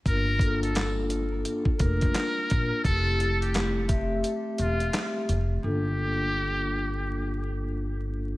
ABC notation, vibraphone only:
X:1
M:4/4
L:1/16
Q:"Swing 16ths" 1/4=86
K:Gdor
V:1 name="Vibraphone"
[B,DFB]2 [B,DFA]4- [B,DFA] [B,DFA]2 z [B,DFB]6 | [A,CEG]2 [A,CEG]4 [A,CGe]8- [A,CGe] z | [B,DFA]16 |]